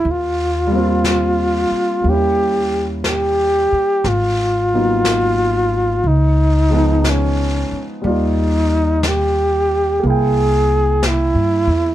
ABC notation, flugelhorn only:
X:1
M:4/4
L:1/16
Q:"Swing" 1/4=60
K:Eb
V:1 name="Flugelhorn"
F8 G3 z G4 | F8 E4 _D3 z | E4 G4 A4 =E4 |]